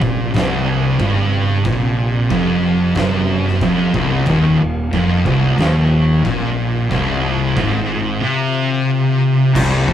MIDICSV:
0, 0, Header, 1, 5, 480
1, 0, Start_track
1, 0, Tempo, 657174
1, 1207, Time_signature, 4, 2, 24, 8
1, 7254, End_track
2, 0, Start_track
2, 0, Title_t, "String machine"
2, 0, Program_c, 0, 50
2, 0, Note_on_c, 0, 48, 72
2, 0, Note_on_c, 0, 62, 74
2, 0, Note_on_c, 0, 67, 68
2, 1195, Note_off_c, 0, 62, 0
2, 1207, Note_on_c, 0, 63, 80
2, 3098, Note_off_c, 0, 48, 0
2, 3103, Note_off_c, 0, 63, 0
2, 3103, Note_off_c, 0, 67, 0
2, 3107, Note_on_c, 0, 65, 78
2, 3112, Note_on_c, 0, 51, 69
2, 3116, Note_on_c, 0, 58, 63
2, 5022, Note_off_c, 0, 58, 0
2, 5044, Note_on_c, 0, 60, 68
2, 6935, Note_off_c, 0, 65, 0
2, 6937, Note_off_c, 0, 51, 0
2, 6952, Note_off_c, 0, 60, 0
2, 6974, Note_on_c, 0, 67, 70
2, 6976, Note_on_c, 0, 48, 81
2, 6979, Note_on_c, 0, 62, 83
2, 7254, Note_off_c, 0, 48, 0
2, 7254, Note_off_c, 0, 62, 0
2, 7254, Note_off_c, 0, 67, 0
2, 7254, End_track
3, 0, Start_track
3, 0, Title_t, "Distorted electric guitar"
3, 0, Program_c, 1, 30
3, 10, Note_on_c, 1, 46, 104
3, 243, Note_off_c, 1, 46, 0
3, 250, Note_on_c, 1, 36, 98
3, 718, Note_off_c, 1, 36, 0
3, 721, Note_on_c, 1, 43, 101
3, 1196, Note_off_c, 1, 43, 0
3, 1209, Note_on_c, 1, 46, 108
3, 1676, Note_off_c, 1, 46, 0
3, 1679, Note_on_c, 1, 41, 100
3, 2154, Note_off_c, 1, 41, 0
3, 2161, Note_on_c, 1, 42, 105
3, 2634, Note_off_c, 1, 42, 0
3, 2645, Note_on_c, 1, 41, 106
3, 2877, Note_off_c, 1, 41, 0
3, 2884, Note_on_c, 1, 36, 100
3, 3116, Note_off_c, 1, 36, 0
3, 3126, Note_on_c, 1, 39, 107
3, 3357, Note_off_c, 1, 39, 0
3, 3368, Note_on_c, 1, 39, 68
3, 3557, Note_off_c, 1, 39, 0
3, 3609, Note_on_c, 1, 41, 102
3, 3839, Note_off_c, 1, 41, 0
3, 3848, Note_on_c, 1, 36, 102
3, 4078, Note_off_c, 1, 36, 0
3, 4090, Note_on_c, 1, 39, 100
3, 4560, Note_off_c, 1, 39, 0
3, 4574, Note_on_c, 1, 46, 99
3, 5043, Note_off_c, 1, 46, 0
3, 5048, Note_on_c, 1, 36, 104
3, 5521, Note_off_c, 1, 36, 0
3, 5532, Note_on_c, 1, 44, 100
3, 6004, Note_off_c, 1, 44, 0
3, 6015, Note_on_c, 1, 48, 108
3, 6968, Note_off_c, 1, 48, 0
3, 6984, Note_on_c, 1, 36, 100
3, 7211, Note_off_c, 1, 36, 0
3, 7220, Note_on_c, 1, 41, 92
3, 7254, Note_off_c, 1, 41, 0
3, 7254, End_track
4, 0, Start_track
4, 0, Title_t, "Fingered electric bass"
4, 0, Program_c, 2, 33
4, 16, Note_on_c, 2, 34, 85
4, 237, Note_off_c, 2, 34, 0
4, 251, Note_on_c, 2, 24, 94
4, 700, Note_off_c, 2, 24, 0
4, 731, Note_on_c, 2, 31, 98
4, 1179, Note_off_c, 2, 31, 0
4, 1204, Note_on_c, 2, 34, 92
4, 1655, Note_off_c, 2, 34, 0
4, 1688, Note_on_c, 2, 29, 97
4, 2136, Note_off_c, 2, 29, 0
4, 2162, Note_on_c, 2, 30, 84
4, 2613, Note_off_c, 2, 30, 0
4, 2644, Note_on_c, 2, 29, 104
4, 2866, Note_off_c, 2, 29, 0
4, 2878, Note_on_c, 2, 24, 92
4, 3103, Note_off_c, 2, 24, 0
4, 3119, Note_on_c, 2, 27, 96
4, 3344, Note_off_c, 2, 27, 0
4, 3366, Note_on_c, 2, 27, 79
4, 3587, Note_off_c, 2, 27, 0
4, 3605, Note_on_c, 2, 29, 91
4, 3827, Note_off_c, 2, 29, 0
4, 3840, Note_on_c, 2, 24, 93
4, 4065, Note_off_c, 2, 24, 0
4, 4078, Note_on_c, 2, 27, 90
4, 4532, Note_off_c, 2, 27, 0
4, 4565, Note_on_c, 2, 34, 101
4, 5016, Note_off_c, 2, 34, 0
4, 5053, Note_on_c, 2, 24, 90
4, 5501, Note_off_c, 2, 24, 0
4, 5532, Note_on_c, 2, 32, 96
4, 5981, Note_off_c, 2, 32, 0
4, 6984, Note_on_c, 2, 24, 100
4, 7202, Note_off_c, 2, 24, 0
4, 7221, Note_on_c, 2, 29, 103
4, 7254, Note_off_c, 2, 29, 0
4, 7254, End_track
5, 0, Start_track
5, 0, Title_t, "Drums"
5, 12, Note_on_c, 9, 36, 107
5, 85, Note_off_c, 9, 36, 0
5, 248, Note_on_c, 9, 49, 54
5, 266, Note_on_c, 9, 38, 112
5, 321, Note_off_c, 9, 49, 0
5, 339, Note_off_c, 9, 38, 0
5, 727, Note_on_c, 9, 49, 53
5, 728, Note_on_c, 9, 36, 110
5, 800, Note_off_c, 9, 49, 0
5, 801, Note_off_c, 9, 36, 0
5, 1202, Note_on_c, 9, 49, 59
5, 1206, Note_on_c, 9, 36, 102
5, 1275, Note_off_c, 9, 49, 0
5, 1279, Note_off_c, 9, 36, 0
5, 1682, Note_on_c, 9, 49, 53
5, 1683, Note_on_c, 9, 36, 100
5, 1755, Note_off_c, 9, 49, 0
5, 1756, Note_off_c, 9, 36, 0
5, 2154, Note_on_c, 9, 49, 56
5, 2160, Note_on_c, 9, 36, 104
5, 2172, Note_on_c, 9, 38, 116
5, 2227, Note_off_c, 9, 49, 0
5, 2233, Note_off_c, 9, 36, 0
5, 2245, Note_off_c, 9, 38, 0
5, 2536, Note_on_c, 9, 38, 33
5, 2609, Note_off_c, 9, 38, 0
5, 2637, Note_on_c, 9, 49, 62
5, 2639, Note_on_c, 9, 36, 112
5, 2711, Note_off_c, 9, 49, 0
5, 2712, Note_off_c, 9, 36, 0
5, 2879, Note_on_c, 9, 36, 106
5, 2952, Note_off_c, 9, 36, 0
5, 3110, Note_on_c, 9, 49, 60
5, 3119, Note_on_c, 9, 36, 109
5, 3183, Note_off_c, 9, 49, 0
5, 3192, Note_off_c, 9, 36, 0
5, 3598, Note_on_c, 9, 49, 58
5, 3600, Note_on_c, 9, 36, 95
5, 3671, Note_off_c, 9, 49, 0
5, 3673, Note_off_c, 9, 36, 0
5, 3842, Note_on_c, 9, 36, 115
5, 3915, Note_off_c, 9, 36, 0
5, 4076, Note_on_c, 9, 49, 56
5, 4095, Note_on_c, 9, 38, 115
5, 4149, Note_off_c, 9, 49, 0
5, 4168, Note_off_c, 9, 38, 0
5, 4564, Note_on_c, 9, 36, 103
5, 4566, Note_on_c, 9, 49, 56
5, 4637, Note_off_c, 9, 36, 0
5, 4639, Note_off_c, 9, 49, 0
5, 5046, Note_on_c, 9, 36, 102
5, 5051, Note_on_c, 9, 49, 58
5, 5119, Note_off_c, 9, 36, 0
5, 5124, Note_off_c, 9, 49, 0
5, 5526, Note_on_c, 9, 49, 56
5, 5527, Note_on_c, 9, 36, 106
5, 5599, Note_off_c, 9, 49, 0
5, 5600, Note_off_c, 9, 36, 0
5, 6977, Note_on_c, 9, 36, 114
5, 6980, Note_on_c, 9, 49, 70
5, 6980, Note_on_c, 9, 57, 127
5, 7050, Note_off_c, 9, 36, 0
5, 7053, Note_off_c, 9, 49, 0
5, 7053, Note_off_c, 9, 57, 0
5, 7218, Note_on_c, 9, 36, 111
5, 7254, Note_off_c, 9, 36, 0
5, 7254, End_track
0, 0, End_of_file